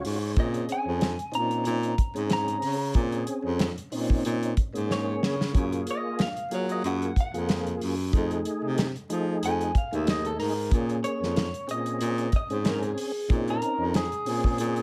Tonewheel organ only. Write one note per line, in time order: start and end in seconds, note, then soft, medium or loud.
0.00 0.18 C#4 medium
0.00 0.19 F4 medium
0.00 0.18 F#4 medium
0.00 0.32 C#5 medium
0.35 1.11 C4 medium
0.35 1.11 C#4 medium
0.35 1.11 G#4 medium
1.32 1.95 C4 medium
1.32 1.95 C#4 medium
1.32 1.95 D#4 medium
2.15 2.77 C4 medium
2.15 2.77 C#4 medium
2.15 2.77 G#4 medium
2.95 3.70 C4 medium
2.95 3.70 C#4 medium
2.95 3.70 G#4 medium
3.92 4.54 C4 medium
3.92 4.54 C#4 medium
3.92 4.54 D#4 medium
4.73 5.35 A#3 medium
4.73 5.36 C#4 medium
4.73 5.36 G#4 medium
5.53 6.28 A#3 medium
5.53 6.28 F4 medium
5.53 6.28 G#4 medium
6.51 7.13 A#3 medium
6.51 7.13 F4 medium
6.51 7.13 G#4 medium
7.34 7.95 A#3 medium
7.34 7.95 F4 medium
7.34 7.95 G#4 medium
8.13 8.88 A3 medium
8.13 8.88 D#4 medium
8.13 8.88 G#4 loud
9.10 9.72 A3 medium
9.10 9.72 D#4 medium
9.10 9.72 G#4 loud
9.92 10.53 A3 medium
9.92 10.53 D#4 medium
9.92 10.53 G#4 medium
10.71 11.46 A#3 medium
10.71 11.46 C#4 medium
10.71 11.46 G#4 medium
11.67 12.30 C4 medium
11.67 12.30 C#4 medium
11.67 12.30 G#4 medium
12.50 13.12 C4 medium
12.50 13.12 C#4 medium
12.50 13.12 G#4 medium
13.29 14.04 C4 medium
13.29 14.04 C#4 medium
13.29 14.04 D#4 medium
14.26 14.82 C4 medium
14.26 14.82 C#4 medium
14.26 14.82 G#4 medium